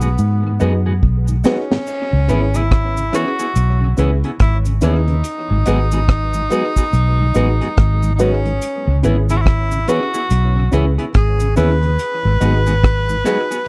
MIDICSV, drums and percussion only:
0, 0, Header, 1, 2, 480
1, 0, Start_track
1, 0, Key_signature, 4, "minor"
1, 0, Tempo, 843882
1, 1063, Time_signature, 4, 2, 24, 8
1, 7782, End_track
2, 0, Start_track
2, 0, Title_t, "Drums"
2, 7, Note_on_c, 9, 69, 77
2, 64, Note_off_c, 9, 69, 0
2, 104, Note_on_c, 9, 69, 62
2, 161, Note_off_c, 9, 69, 0
2, 341, Note_on_c, 9, 69, 52
2, 398, Note_off_c, 9, 69, 0
2, 585, Note_on_c, 9, 36, 91
2, 642, Note_off_c, 9, 36, 0
2, 726, Note_on_c, 9, 69, 62
2, 783, Note_off_c, 9, 69, 0
2, 820, Note_on_c, 9, 69, 72
2, 828, Note_on_c, 9, 38, 94
2, 877, Note_off_c, 9, 69, 0
2, 885, Note_off_c, 9, 38, 0
2, 976, Note_on_c, 9, 38, 84
2, 1032, Note_off_c, 9, 38, 0
2, 1063, Note_on_c, 9, 69, 65
2, 1065, Note_on_c, 9, 49, 92
2, 1120, Note_off_c, 9, 69, 0
2, 1122, Note_off_c, 9, 49, 0
2, 1301, Note_on_c, 9, 42, 76
2, 1302, Note_on_c, 9, 69, 60
2, 1358, Note_off_c, 9, 42, 0
2, 1359, Note_off_c, 9, 69, 0
2, 1447, Note_on_c, 9, 69, 76
2, 1453, Note_on_c, 9, 42, 48
2, 1504, Note_off_c, 9, 69, 0
2, 1510, Note_off_c, 9, 42, 0
2, 1543, Note_on_c, 9, 36, 96
2, 1545, Note_on_c, 9, 37, 117
2, 1547, Note_on_c, 9, 42, 59
2, 1600, Note_off_c, 9, 36, 0
2, 1602, Note_off_c, 9, 37, 0
2, 1604, Note_off_c, 9, 42, 0
2, 1690, Note_on_c, 9, 69, 61
2, 1692, Note_on_c, 9, 42, 56
2, 1747, Note_off_c, 9, 69, 0
2, 1749, Note_off_c, 9, 42, 0
2, 1780, Note_on_c, 9, 42, 81
2, 1788, Note_on_c, 9, 69, 81
2, 1789, Note_on_c, 9, 37, 66
2, 1837, Note_off_c, 9, 42, 0
2, 1845, Note_off_c, 9, 37, 0
2, 1845, Note_off_c, 9, 69, 0
2, 1930, Note_on_c, 9, 69, 86
2, 1987, Note_off_c, 9, 69, 0
2, 2024, Note_on_c, 9, 69, 71
2, 2026, Note_on_c, 9, 42, 81
2, 2081, Note_off_c, 9, 69, 0
2, 2083, Note_off_c, 9, 42, 0
2, 2260, Note_on_c, 9, 69, 54
2, 2265, Note_on_c, 9, 42, 69
2, 2317, Note_off_c, 9, 69, 0
2, 2322, Note_off_c, 9, 42, 0
2, 2411, Note_on_c, 9, 42, 52
2, 2467, Note_off_c, 9, 42, 0
2, 2500, Note_on_c, 9, 42, 80
2, 2503, Note_on_c, 9, 36, 100
2, 2503, Note_on_c, 9, 37, 92
2, 2557, Note_off_c, 9, 42, 0
2, 2560, Note_off_c, 9, 36, 0
2, 2560, Note_off_c, 9, 37, 0
2, 2647, Note_on_c, 9, 69, 60
2, 2653, Note_on_c, 9, 42, 57
2, 2704, Note_off_c, 9, 69, 0
2, 2710, Note_off_c, 9, 42, 0
2, 2738, Note_on_c, 9, 69, 70
2, 2740, Note_on_c, 9, 42, 70
2, 2747, Note_on_c, 9, 37, 65
2, 2795, Note_off_c, 9, 69, 0
2, 2797, Note_off_c, 9, 42, 0
2, 2804, Note_off_c, 9, 37, 0
2, 2888, Note_on_c, 9, 42, 46
2, 2945, Note_off_c, 9, 42, 0
2, 2979, Note_on_c, 9, 42, 91
2, 2984, Note_on_c, 9, 69, 60
2, 3036, Note_off_c, 9, 42, 0
2, 3041, Note_off_c, 9, 69, 0
2, 3217, Note_on_c, 9, 42, 75
2, 3221, Note_on_c, 9, 69, 63
2, 3274, Note_off_c, 9, 42, 0
2, 3278, Note_off_c, 9, 69, 0
2, 3365, Note_on_c, 9, 69, 76
2, 3370, Note_on_c, 9, 42, 47
2, 3422, Note_off_c, 9, 69, 0
2, 3427, Note_off_c, 9, 42, 0
2, 3461, Note_on_c, 9, 36, 106
2, 3463, Note_on_c, 9, 37, 118
2, 3465, Note_on_c, 9, 42, 68
2, 3518, Note_off_c, 9, 36, 0
2, 3520, Note_off_c, 9, 37, 0
2, 3521, Note_off_c, 9, 42, 0
2, 3603, Note_on_c, 9, 69, 64
2, 3611, Note_on_c, 9, 42, 51
2, 3660, Note_off_c, 9, 69, 0
2, 3668, Note_off_c, 9, 42, 0
2, 3698, Note_on_c, 9, 42, 76
2, 3704, Note_on_c, 9, 69, 78
2, 3755, Note_off_c, 9, 42, 0
2, 3761, Note_off_c, 9, 69, 0
2, 3847, Note_on_c, 9, 36, 61
2, 3848, Note_on_c, 9, 69, 94
2, 3904, Note_off_c, 9, 36, 0
2, 3905, Note_off_c, 9, 69, 0
2, 3943, Note_on_c, 9, 69, 62
2, 3947, Note_on_c, 9, 42, 80
2, 4000, Note_off_c, 9, 69, 0
2, 4004, Note_off_c, 9, 42, 0
2, 4178, Note_on_c, 9, 69, 58
2, 4184, Note_on_c, 9, 42, 71
2, 4235, Note_off_c, 9, 69, 0
2, 4241, Note_off_c, 9, 42, 0
2, 4331, Note_on_c, 9, 42, 50
2, 4387, Note_off_c, 9, 42, 0
2, 4421, Note_on_c, 9, 42, 82
2, 4423, Note_on_c, 9, 36, 92
2, 4425, Note_on_c, 9, 37, 107
2, 4478, Note_off_c, 9, 42, 0
2, 4480, Note_off_c, 9, 36, 0
2, 4482, Note_off_c, 9, 37, 0
2, 4566, Note_on_c, 9, 69, 69
2, 4574, Note_on_c, 9, 42, 54
2, 4623, Note_off_c, 9, 69, 0
2, 4631, Note_off_c, 9, 42, 0
2, 4660, Note_on_c, 9, 69, 74
2, 4664, Note_on_c, 9, 42, 61
2, 4716, Note_off_c, 9, 69, 0
2, 4721, Note_off_c, 9, 42, 0
2, 4810, Note_on_c, 9, 42, 50
2, 4867, Note_off_c, 9, 42, 0
2, 4902, Note_on_c, 9, 69, 59
2, 4903, Note_on_c, 9, 42, 90
2, 4959, Note_off_c, 9, 69, 0
2, 4960, Note_off_c, 9, 42, 0
2, 5139, Note_on_c, 9, 42, 73
2, 5140, Note_on_c, 9, 69, 59
2, 5196, Note_off_c, 9, 42, 0
2, 5197, Note_off_c, 9, 69, 0
2, 5286, Note_on_c, 9, 69, 80
2, 5289, Note_on_c, 9, 42, 50
2, 5343, Note_off_c, 9, 69, 0
2, 5346, Note_off_c, 9, 42, 0
2, 5380, Note_on_c, 9, 36, 99
2, 5384, Note_on_c, 9, 37, 127
2, 5386, Note_on_c, 9, 42, 65
2, 5437, Note_off_c, 9, 36, 0
2, 5441, Note_off_c, 9, 37, 0
2, 5443, Note_off_c, 9, 42, 0
2, 5525, Note_on_c, 9, 69, 60
2, 5530, Note_on_c, 9, 42, 56
2, 5582, Note_off_c, 9, 69, 0
2, 5587, Note_off_c, 9, 42, 0
2, 5618, Note_on_c, 9, 42, 74
2, 5623, Note_on_c, 9, 69, 80
2, 5675, Note_off_c, 9, 42, 0
2, 5680, Note_off_c, 9, 69, 0
2, 5768, Note_on_c, 9, 69, 91
2, 5825, Note_off_c, 9, 69, 0
2, 5861, Note_on_c, 9, 69, 69
2, 5863, Note_on_c, 9, 42, 85
2, 5918, Note_off_c, 9, 69, 0
2, 5920, Note_off_c, 9, 42, 0
2, 6098, Note_on_c, 9, 69, 57
2, 6101, Note_on_c, 9, 42, 72
2, 6155, Note_off_c, 9, 69, 0
2, 6157, Note_off_c, 9, 42, 0
2, 6249, Note_on_c, 9, 42, 49
2, 6306, Note_off_c, 9, 42, 0
2, 6338, Note_on_c, 9, 42, 78
2, 6341, Note_on_c, 9, 36, 104
2, 6341, Note_on_c, 9, 37, 95
2, 6395, Note_off_c, 9, 42, 0
2, 6398, Note_off_c, 9, 36, 0
2, 6398, Note_off_c, 9, 37, 0
2, 6484, Note_on_c, 9, 69, 70
2, 6490, Note_on_c, 9, 42, 57
2, 6541, Note_off_c, 9, 69, 0
2, 6547, Note_off_c, 9, 42, 0
2, 6578, Note_on_c, 9, 69, 71
2, 6581, Note_on_c, 9, 42, 63
2, 6588, Note_on_c, 9, 37, 54
2, 6635, Note_off_c, 9, 69, 0
2, 6637, Note_off_c, 9, 42, 0
2, 6645, Note_off_c, 9, 37, 0
2, 6727, Note_on_c, 9, 42, 49
2, 6784, Note_off_c, 9, 42, 0
2, 6819, Note_on_c, 9, 69, 57
2, 6821, Note_on_c, 9, 42, 93
2, 6876, Note_off_c, 9, 69, 0
2, 6878, Note_off_c, 9, 42, 0
2, 7059, Note_on_c, 9, 42, 75
2, 7061, Note_on_c, 9, 69, 62
2, 7116, Note_off_c, 9, 42, 0
2, 7118, Note_off_c, 9, 69, 0
2, 7204, Note_on_c, 9, 69, 76
2, 7210, Note_on_c, 9, 42, 54
2, 7261, Note_off_c, 9, 69, 0
2, 7267, Note_off_c, 9, 42, 0
2, 7301, Note_on_c, 9, 36, 109
2, 7305, Note_on_c, 9, 37, 126
2, 7306, Note_on_c, 9, 42, 65
2, 7358, Note_off_c, 9, 36, 0
2, 7362, Note_off_c, 9, 37, 0
2, 7363, Note_off_c, 9, 42, 0
2, 7445, Note_on_c, 9, 69, 62
2, 7449, Note_on_c, 9, 42, 51
2, 7502, Note_off_c, 9, 69, 0
2, 7506, Note_off_c, 9, 42, 0
2, 7540, Note_on_c, 9, 42, 77
2, 7542, Note_on_c, 9, 69, 74
2, 7548, Note_on_c, 9, 37, 69
2, 7597, Note_off_c, 9, 42, 0
2, 7599, Note_off_c, 9, 69, 0
2, 7605, Note_off_c, 9, 37, 0
2, 7688, Note_on_c, 9, 69, 85
2, 7745, Note_off_c, 9, 69, 0
2, 7782, End_track
0, 0, End_of_file